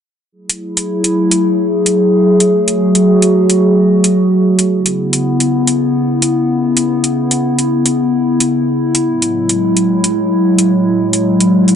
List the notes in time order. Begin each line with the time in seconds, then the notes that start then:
0.32 F#3 A3 E4 G#4
0.50 closed hi-hat
0.77 closed hi-hat
1.04 closed hi-hat
1.31 closed hi-hat
1.86 closed hi-hat
2.40 closed hi-hat
2.51 F#4
2.68 closed hi-hat
2.95 closed hi-hat
3.22 closed hi-hat
3.50 closed hi-hat
4.04 closed hi-hat
4.59 closed hi-hat
4.69 C#3 B3 E4
4.86 closed hi-hat
5.13 closed hi-hat
5.40 closed hi-hat
5.67 closed hi-hat
6.22 closed hi-hat
6.77 closed hi-hat
7.04 closed hi-hat
7.31 closed hi-hat
7.59 closed hi-hat
7.86 closed hi-hat
8.40 closed hi-hat
8.95 closed hi-hat
9.06 A2 F#3 G#3
9.22 closed hi-hat
9.49 closed hi-hat
9.77 closed hi-hat
10.04 closed hi-hat
10.58 closed hi-hat
11.13 closed hi-hat
11.40 closed hi-hat
11.68 closed hi-hat